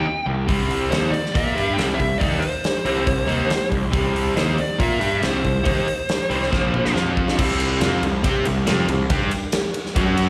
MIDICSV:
0, 0, Header, 1, 7, 480
1, 0, Start_track
1, 0, Tempo, 430416
1, 545, Time_signature, 4, 2, 24, 8
1, 11477, End_track
2, 0, Start_track
2, 0, Title_t, "Lead electric guitar"
2, 0, Program_c, 0, 29
2, 0, Note_on_c, 0, 79, 79
2, 273, Note_off_c, 0, 79, 0
2, 1011, Note_on_c, 0, 72, 75
2, 1235, Note_off_c, 0, 72, 0
2, 1239, Note_on_c, 0, 74, 76
2, 1472, Note_on_c, 0, 76, 88
2, 1502, Note_off_c, 0, 74, 0
2, 1937, Note_off_c, 0, 76, 0
2, 1945, Note_on_c, 0, 79, 89
2, 2016, Note_off_c, 0, 79, 0
2, 2170, Note_on_c, 0, 76, 77
2, 2431, Note_on_c, 0, 74, 91
2, 2449, Note_off_c, 0, 76, 0
2, 2673, Note_off_c, 0, 74, 0
2, 2677, Note_on_c, 0, 72, 80
2, 4095, Note_off_c, 0, 72, 0
2, 4880, Note_on_c, 0, 72, 80
2, 5128, Note_off_c, 0, 72, 0
2, 5138, Note_on_c, 0, 74, 82
2, 5361, Note_on_c, 0, 76, 100
2, 5377, Note_off_c, 0, 74, 0
2, 5856, Note_off_c, 0, 76, 0
2, 5859, Note_on_c, 0, 72, 71
2, 7727, Note_off_c, 0, 72, 0
2, 11477, End_track
3, 0, Start_track
3, 0, Title_t, "Distorted electric guitar"
3, 0, Program_c, 1, 30
3, 286, Note_on_c, 1, 48, 61
3, 290, Note_on_c, 1, 55, 75
3, 488, Note_off_c, 1, 48, 0
3, 490, Note_off_c, 1, 55, 0
3, 523, Note_on_c, 1, 48, 83
3, 533, Note_on_c, 1, 55, 86
3, 542, Note_on_c, 1, 60, 95
3, 1001, Note_off_c, 1, 48, 0
3, 1005, Note_on_c, 1, 51, 86
3, 1011, Note_off_c, 1, 55, 0
3, 1016, Note_on_c, 1, 58, 84
3, 1018, Note_off_c, 1, 60, 0
3, 1023, Note_on_c, 1, 63, 97
3, 1250, Note_off_c, 1, 51, 0
3, 1255, Note_off_c, 1, 58, 0
3, 1259, Note_off_c, 1, 63, 0
3, 1498, Note_on_c, 1, 58, 73
3, 1505, Note_on_c, 1, 65, 83
3, 1517, Note_on_c, 1, 70, 98
3, 1731, Note_off_c, 1, 58, 0
3, 1735, Note_on_c, 1, 55, 88
3, 1737, Note_off_c, 1, 65, 0
3, 1742, Note_on_c, 1, 62, 93
3, 1746, Note_off_c, 1, 70, 0
3, 1750, Note_on_c, 1, 67, 94
3, 1960, Note_off_c, 1, 55, 0
3, 1962, Note_on_c, 1, 48, 84
3, 1974, Note_on_c, 1, 55, 90
3, 1976, Note_off_c, 1, 62, 0
3, 1980, Note_on_c, 1, 60, 98
3, 1983, Note_off_c, 1, 67, 0
3, 2202, Note_off_c, 1, 48, 0
3, 2207, Note_off_c, 1, 55, 0
3, 2215, Note_on_c, 1, 48, 66
3, 2219, Note_off_c, 1, 60, 0
3, 2220, Note_on_c, 1, 55, 71
3, 2416, Note_off_c, 1, 48, 0
3, 2418, Note_off_c, 1, 55, 0
3, 2446, Note_on_c, 1, 51, 83
3, 2455, Note_on_c, 1, 58, 84
3, 2459, Note_on_c, 1, 63, 94
3, 2693, Note_off_c, 1, 51, 0
3, 2697, Note_off_c, 1, 58, 0
3, 2699, Note_off_c, 1, 63, 0
3, 3178, Note_on_c, 1, 48, 82
3, 3181, Note_on_c, 1, 55, 75
3, 3185, Note_on_c, 1, 60, 92
3, 3400, Note_off_c, 1, 48, 0
3, 3404, Note_off_c, 1, 55, 0
3, 3414, Note_on_c, 1, 48, 61
3, 3417, Note_on_c, 1, 55, 65
3, 3423, Note_off_c, 1, 60, 0
3, 3617, Note_off_c, 1, 48, 0
3, 3619, Note_off_c, 1, 55, 0
3, 3644, Note_on_c, 1, 51, 80
3, 3650, Note_on_c, 1, 58, 89
3, 3654, Note_on_c, 1, 63, 83
3, 3876, Note_off_c, 1, 51, 0
3, 3896, Note_off_c, 1, 58, 0
3, 3898, Note_off_c, 1, 63, 0
3, 4132, Note_on_c, 1, 55, 68
3, 4134, Note_on_c, 1, 48, 61
3, 4337, Note_off_c, 1, 55, 0
3, 4338, Note_off_c, 1, 48, 0
3, 4367, Note_on_c, 1, 48, 82
3, 4378, Note_on_c, 1, 55, 89
3, 4380, Note_on_c, 1, 60, 90
3, 4849, Note_off_c, 1, 48, 0
3, 4853, Note_on_c, 1, 51, 99
3, 4856, Note_off_c, 1, 55, 0
3, 4860, Note_on_c, 1, 58, 91
3, 4863, Note_off_c, 1, 60, 0
3, 4869, Note_on_c, 1, 63, 99
3, 5088, Note_off_c, 1, 51, 0
3, 5103, Note_off_c, 1, 58, 0
3, 5107, Note_off_c, 1, 63, 0
3, 5336, Note_on_c, 1, 58, 80
3, 5346, Note_on_c, 1, 65, 102
3, 5352, Note_on_c, 1, 70, 93
3, 5570, Note_off_c, 1, 58, 0
3, 5575, Note_on_c, 1, 55, 89
3, 5578, Note_off_c, 1, 65, 0
3, 5583, Note_on_c, 1, 62, 84
3, 5590, Note_off_c, 1, 70, 0
3, 5595, Note_on_c, 1, 67, 91
3, 5808, Note_off_c, 1, 55, 0
3, 5808, Note_on_c, 1, 48, 95
3, 5820, Note_off_c, 1, 62, 0
3, 5822, Note_on_c, 1, 55, 80
3, 5824, Note_on_c, 1, 60, 88
3, 5831, Note_off_c, 1, 67, 0
3, 6038, Note_off_c, 1, 55, 0
3, 6039, Note_off_c, 1, 48, 0
3, 6051, Note_on_c, 1, 55, 73
3, 6052, Note_on_c, 1, 48, 68
3, 6066, Note_off_c, 1, 60, 0
3, 6259, Note_off_c, 1, 48, 0
3, 6259, Note_off_c, 1, 55, 0
3, 6284, Note_on_c, 1, 51, 89
3, 6295, Note_on_c, 1, 58, 83
3, 6301, Note_on_c, 1, 63, 96
3, 6537, Note_off_c, 1, 51, 0
3, 6542, Note_off_c, 1, 58, 0
3, 6545, Note_off_c, 1, 63, 0
3, 7019, Note_on_c, 1, 48, 69
3, 7023, Note_on_c, 1, 55, 81
3, 7030, Note_on_c, 1, 60, 91
3, 7250, Note_off_c, 1, 48, 0
3, 7254, Note_off_c, 1, 55, 0
3, 7254, Note_on_c, 1, 46, 82
3, 7259, Note_on_c, 1, 53, 96
3, 7262, Note_off_c, 1, 60, 0
3, 7266, Note_on_c, 1, 58, 93
3, 7724, Note_off_c, 1, 53, 0
3, 7733, Note_off_c, 1, 46, 0
3, 7737, Note_on_c, 1, 53, 87
3, 7743, Note_on_c, 1, 60, 90
3, 7747, Note_off_c, 1, 58, 0
3, 7756, Note_on_c, 1, 65, 91
3, 8214, Note_off_c, 1, 53, 0
3, 8218, Note_on_c, 1, 48, 77
3, 8225, Note_off_c, 1, 60, 0
3, 8232, Note_off_c, 1, 65, 0
3, 8233, Note_on_c, 1, 55, 88
3, 8243, Note_on_c, 1, 60, 88
3, 8691, Note_off_c, 1, 60, 0
3, 8695, Note_off_c, 1, 48, 0
3, 8699, Note_on_c, 1, 53, 95
3, 8700, Note_off_c, 1, 55, 0
3, 8705, Note_on_c, 1, 60, 101
3, 8716, Note_on_c, 1, 65, 106
3, 8940, Note_off_c, 1, 53, 0
3, 8944, Note_on_c, 1, 48, 60
3, 8945, Note_off_c, 1, 60, 0
3, 8949, Note_on_c, 1, 55, 72
3, 8951, Note_off_c, 1, 65, 0
3, 9144, Note_off_c, 1, 48, 0
3, 9146, Note_off_c, 1, 55, 0
3, 9178, Note_on_c, 1, 60, 87
3, 9189, Note_on_c, 1, 67, 82
3, 9199, Note_on_c, 1, 72, 100
3, 9421, Note_off_c, 1, 60, 0
3, 9426, Note_off_c, 1, 67, 0
3, 9430, Note_on_c, 1, 48, 59
3, 9431, Note_off_c, 1, 72, 0
3, 9434, Note_on_c, 1, 55, 75
3, 9626, Note_off_c, 1, 48, 0
3, 9628, Note_off_c, 1, 55, 0
3, 9659, Note_on_c, 1, 53, 91
3, 9667, Note_on_c, 1, 60, 95
3, 9679, Note_on_c, 1, 65, 100
3, 9900, Note_off_c, 1, 53, 0
3, 9904, Note_off_c, 1, 60, 0
3, 9910, Note_off_c, 1, 65, 0
3, 9911, Note_on_c, 1, 48, 67
3, 9916, Note_on_c, 1, 55, 71
3, 10105, Note_off_c, 1, 48, 0
3, 10108, Note_off_c, 1, 55, 0
3, 10143, Note_on_c, 1, 55, 80
3, 10152, Note_on_c, 1, 62, 98
3, 10160, Note_on_c, 1, 67, 92
3, 10381, Note_off_c, 1, 55, 0
3, 10386, Note_off_c, 1, 62, 0
3, 10390, Note_off_c, 1, 67, 0
3, 11096, Note_on_c, 1, 54, 94
3, 11110, Note_on_c, 1, 61, 87
3, 11119, Note_on_c, 1, 66, 99
3, 11477, Note_off_c, 1, 54, 0
3, 11477, Note_off_c, 1, 61, 0
3, 11477, Note_off_c, 1, 66, 0
3, 11477, End_track
4, 0, Start_track
4, 0, Title_t, "Picked electric bass"
4, 0, Program_c, 2, 34
4, 305, Note_on_c, 2, 36, 70
4, 528, Note_off_c, 2, 36, 0
4, 539, Note_on_c, 2, 36, 91
4, 990, Note_off_c, 2, 36, 0
4, 1026, Note_on_c, 2, 39, 95
4, 1250, Note_off_c, 2, 39, 0
4, 1507, Note_on_c, 2, 46, 82
4, 1732, Note_off_c, 2, 46, 0
4, 1745, Note_on_c, 2, 43, 86
4, 1971, Note_off_c, 2, 43, 0
4, 1985, Note_on_c, 2, 36, 80
4, 2211, Note_off_c, 2, 36, 0
4, 2231, Note_on_c, 2, 36, 79
4, 2455, Note_off_c, 2, 36, 0
4, 2468, Note_on_c, 2, 39, 92
4, 2694, Note_off_c, 2, 39, 0
4, 3184, Note_on_c, 2, 36, 85
4, 3413, Note_off_c, 2, 36, 0
4, 3421, Note_on_c, 2, 36, 69
4, 3651, Note_off_c, 2, 36, 0
4, 3671, Note_on_c, 2, 39, 92
4, 3897, Note_off_c, 2, 39, 0
4, 4145, Note_on_c, 2, 36, 81
4, 4374, Note_off_c, 2, 36, 0
4, 4392, Note_on_c, 2, 36, 98
4, 4842, Note_off_c, 2, 36, 0
4, 4875, Note_on_c, 2, 39, 93
4, 5101, Note_off_c, 2, 39, 0
4, 5349, Note_on_c, 2, 46, 91
4, 5578, Note_off_c, 2, 46, 0
4, 5590, Note_on_c, 2, 43, 91
4, 5819, Note_off_c, 2, 43, 0
4, 5841, Note_on_c, 2, 36, 84
4, 6065, Note_off_c, 2, 36, 0
4, 6074, Note_on_c, 2, 36, 73
4, 6301, Note_off_c, 2, 36, 0
4, 6308, Note_on_c, 2, 39, 89
4, 6538, Note_off_c, 2, 39, 0
4, 7028, Note_on_c, 2, 36, 81
4, 7259, Note_off_c, 2, 36, 0
4, 7271, Note_on_c, 2, 34, 87
4, 7723, Note_off_c, 2, 34, 0
4, 7748, Note_on_c, 2, 41, 86
4, 8201, Note_off_c, 2, 41, 0
4, 8240, Note_on_c, 2, 36, 99
4, 8687, Note_off_c, 2, 36, 0
4, 8716, Note_on_c, 2, 41, 107
4, 8936, Note_off_c, 2, 41, 0
4, 8943, Note_on_c, 2, 36, 73
4, 9174, Note_off_c, 2, 36, 0
4, 9193, Note_on_c, 2, 48, 95
4, 9419, Note_off_c, 2, 48, 0
4, 9437, Note_on_c, 2, 36, 86
4, 9660, Note_off_c, 2, 36, 0
4, 9667, Note_on_c, 2, 41, 89
4, 9894, Note_off_c, 2, 41, 0
4, 9906, Note_on_c, 2, 36, 82
4, 10133, Note_off_c, 2, 36, 0
4, 10152, Note_on_c, 2, 43, 100
4, 10376, Note_off_c, 2, 43, 0
4, 11105, Note_on_c, 2, 42, 84
4, 11477, Note_off_c, 2, 42, 0
4, 11477, End_track
5, 0, Start_track
5, 0, Title_t, "Muted distorted electric guitar strokes"
5, 68, Note_on_c, 9, 29, 49
5, 179, Note_off_c, 9, 29, 0
5, 1261, Note_on_c, 9, 29, 50
5, 1373, Note_off_c, 9, 29, 0
5, 3881, Note_on_c, 9, 29, 57
5, 3992, Note_off_c, 9, 29, 0
5, 5092, Note_on_c, 9, 29, 47
5, 5204, Note_off_c, 9, 29, 0
5, 11477, End_track
6, 0, Start_track
6, 0, Title_t, "Muted picked electric bass strokes"
6, 68, Note_on_c, 9, 29, 34
6, 179, Note_off_c, 9, 29, 0
6, 1260, Note_on_c, 9, 29, 37
6, 1372, Note_off_c, 9, 29, 0
6, 3923, Note_on_c, 9, 29, 38
6, 4035, Note_off_c, 9, 29, 0
6, 5117, Note_on_c, 9, 29, 40
6, 5229, Note_off_c, 9, 29, 0
6, 11477, End_track
7, 0, Start_track
7, 0, Title_t, "Drums"
7, 542, Note_on_c, 9, 46, 62
7, 543, Note_on_c, 9, 36, 99
7, 654, Note_off_c, 9, 46, 0
7, 655, Note_off_c, 9, 36, 0
7, 788, Note_on_c, 9, 46, 47
7, 899, Note_off_c, 9, 46, 0
7, 1027, Note_on_c, 9, 46, 69
7, 1036, Note_on_c, 9, 38, 110
7, 1139, Note_off_c, 9, 46, 0
7, 1148, Note_off_c, 9, 38, 0
7, 1269, Note_on_c, 9, 46, 42
7, 1381, Note_off_c, 9, 46, 0
7, 1401, Note_on_c, 9, 38, 28
7, 1509, Note_on_c, 9, 36, 111
7, 1512, Note_off_c, 9, 38, 0
7, 1514, Note_on_c, 9, 46, 63
7, 1620, Note_off_c, 9, 36, 0
7, 1626, Note_off_c, 9, 46, 0
7, 1760, Note_on_c, 9, 46, 47
7, 1872, Note_off_c, 9, 46, 0
7, 1991, Note_on_c, 9, 46, 64
7, 2000, Note_on_c, 9, 38, 98
7, 2103, Note_off_c, 9, 46, 0
7, 2112, Note_off_c, 9, 38, 0
7, 2227, Note_on_c, 9, 46, 48
7, 2228, Note_on_c, 9, 36, 67
7, 2339, Note_off_c, 9, 46, 0
7, 2340, Note_off_c, 9, 36, 0
7, 2466, Note_on_c, 9, 46, 68
7, 2468, Note_on_c, 9, 36, 102
7, 2578, Note_off_c, 9, 46, 0
7, 2579, Note_off_c, 9, 36, 0
7, 2702, Note_on_c, 9, 46, 51
7, 2814, Note_off_c, 9, 46, 0
7, 2947, Note_on_c, 9, 46, 68
7, 2956, Note_on_c, 9, 38, 104
7, 3058, Note_off_c, 9, 46, 0
7, 3067, Note_off_c, 9, 38, 0
7, 3187, Note_on_c, 9, 46, 53
7, 3298, Note_off_c, 9, 46, 0
7, 3422, Note_on_c, 9, 46, 68
7, 3425, Note_on_c, 9, 36, 108
7, 3533, Note_off_c, 9, 46, 0
7, 3536, Note_off_c, 9, 36, 0
7, 3669, Note_on_c, 9, 46, 45
7, 3780, Note_off_c, 9, 46, 0
7, 3907, Note_on_c, 9, 46, 67
7, 3916, Note_on_c, 9, 38, 113
7, 4018, Note_off_c, 9, 46, 0
7, 4027, Note_off_c, 9, 38, 0
7, 4145, Note_on_c, 9, 46, 45
7, 4147, Note_on_c, 9, 36, 73
7, 4256, Note_off_c, 9, 46, 0
7, 4259, Note_off_c, 9, 36, 0
7, 4387, Note_on_c, 9, 36, 114
7, 4392, Note_on_c, 9, 46, 60
7, 4499, Note_off_c, 9, 36, 0
7, 4503, Note_off_c, 9, 46, 0
7, 4640, Note_on_c, 9, 46, 47
7, 4752, Note_off_c, 9, 46, 0
7, 4874, Note_on_c, 9, 46, 61
7, 4883, Note_on_c, 9, 38, 109
7, 4985, Note_off_c, 9, 46, 0
7, 4994, Note_off_c, 9, 38, 0
7, 5108, Note_on_c, 9, 46, 44
7, 5220, Note_off_c, 9, 46, 0
7, 5350, Note_on_c, 9, 36, 105
7, 5351, Note_on_c, 9, 46, 68
7, 5462, Note_off_c, 9, 36, 0
7, 5463, Note_off_c, 9, 46, 0
7, 5588, Note_on_c, 9, 46, 49
7, 5700, Note_off_c, 9, 46, 0
7, 5828, Note_on_c, 9, 46, 64
7, 5837, Note_on_c, 9, 38, 106
7, 5940, Note_off_c, 9, 46, 0
7, 5949, Note_off_c, 9, 38, 0
7, 6072, Note_on_c, 9, 46, 49
7, 6074, Note_on_c, 9, 36, 70
7, 6184, Note_off_c, 9, 46, 0
7, 6185, Note_off_c, 9, 36, 0
7, 6305, Note_on_c, 9, 46, 71
7, 6314, Note_on_c, 9, 36, 106
7, 6417, Note_off_c, 9, 46, 0
7, 6426, Note_off_c, 9, 36, 0
7, 6556, Note_on_c, 9, 46, 47
7, 6668, Note_off_c, 9, 46, 0
7, 6790, Note_on_c, 9, 46, 65
7, 6799, Note_on_c, 9, 38, 100
7, 6902, Note_off_c, 9, 46, 0
7, 6911, Note_off_c, 9, 38, 0
7, 7036, Note_on_c, 9, 46, 47
7, 7148, Note_off_c, 9, 46, 0
7, 7164, Note_on_c, 9, 38, 31
7, 7276, Note_off_c, 9, 38, 0
7, 7278, Note_on_c, 9, 36, 100
7, 7282, Note_on_c, 9, 38, 58
7, 7389, Note_off_c, 9, 36, 0
7, 7394, Note_off_c, 9, 38, 0
7, 7516, Note_on_c, 9, 47, 65
7, 7627, Note_off_c, 9, 47, 0
7, 7644, Note_on_c, 9, 38, 59
7, 7756, Note_off_c, 9, 38, 0
7, 7763, Note_on_c, 9, 38, 76
7, 7874, Note_off_c, 9, 38, 0
7, 7998, Note_on_c, 9, 36, 80
7, 8109, Note_off_c, 9, 36, 0
7, 8122, Note_on_c, 9, 38, 73
7, 8233, Note_off_c, 9, 38, 0
7, 8237, Note_on_c, 9, 49, 120
7, 8239, Note_on_c, 9, 36, 104
7, 8348, Note_off_c, 9, 49, 0
7, 8350, Note_off_c, 9, 36, 0
7, 8474, Note_on_c, 9, 51, 68
7, 8585, Note_off_c, 9, 51, 0
7, 8710, Note_on_c, 9, 51, 83
7, 8719, Note_on_c, 9, 38, 107
7, 8822, Note_off_c, 9, 51, 0
7, 8831, Note_off_c, 9, 38, 0
7, 8953, Note_on_c, 9, 51, 59
7, 9065, Note_off_c, 9, 51, 0
7, 9190, Note_on_c, 9, 51, 96
7, 9193, Note_on_c, 9, 36, 99
7, 9302, Note_off_c, 9, 51, 0
7, 9305, Note_off_c, 9, 36, 0
7, 9427, Note_on_c, 9, 51, 69
7, 9539, Note_off_c, 9, 51, 0
7, 9668, Note_on_c, 9, 51, 88
7, 9677, Note_on_c, 9, 38, 112
7, 9780, Note_off_c, 9, 51, 0
7, 9789, Note_off_c, 9, 38, 0
7, 9908, Note_on_c, 9, 51, 76
7, 10019, Note_off_c, 9, 51, 0
7, 10147, Note_on_c, 9, 51, 100
7, 10150, Note_on_c, 9, 36, 113
7, 10258, Note_off_c, 9, 51, 0
7, 10262, Note_off_c, 9, 36, 0
7, 10385, Note_on_c, 9, 51, 76
7, 10496, Note_off_c, 9, 51, 0
7, 10620, Note_on_c, 9, 51, 109
7, 10629, Note_on_c, 9, 38, 113
7, 10732, Note_off_c, 9, 51, 0
7, 10740, Note_off_c, 9, 38, 0
7, 10863, Note_on_c, 9, 51, 71
7, 10975, Note_off_c, 9, 51, 0
7, 10996, Note_on_c, 9, 38, 31
7, 11106, Note_on_c, 9, 51, 97
7, 11108, Note_off_c, 9, 38, 0
7, 11109, Note_on_c, 9, 36, 98
7, 11218, Note_off_c, 9, 51, 0
7, 11220, Note_off_c, 9, 36, 0
7, 11346, Note_on_c, 9, 51, 74
7, 11458, Note_off_c, 9, 51, 0
7, 11477, End_track
0, 0, End_of_file